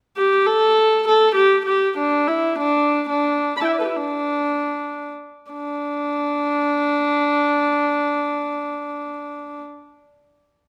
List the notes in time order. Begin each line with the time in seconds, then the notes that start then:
0.17 G4
0.46 A4
1.08 A4
1.36 G4
1.66 G4
1.98 D4
2.28 E4
2.59 D4
3.09 D4
3.57 A5 B5
3.61 E4 G5
3.69 E5
3.73 D5
3.79 A4 B4
3.85 E4 G4
3.96 D4
5.51 D4